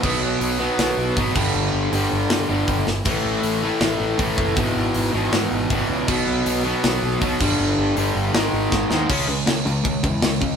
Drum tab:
CC |x------x|--------|x-------|--------|
HH |--o-o-o-|--o-o-o-|o-o-o-o-|o-o-o-o-|
SD |----o---|----o--o|----o---|----o---|
BD |o-----oo|------o-|o-----oo|o-----o-|

CC |x------x|--------|xxxxxxxx|
HH |--o-o-o-|--o-o---|--------|
SD |----o---|----o-oo|--o---o-|
BD |o-----oo|------o-|o---oo-o|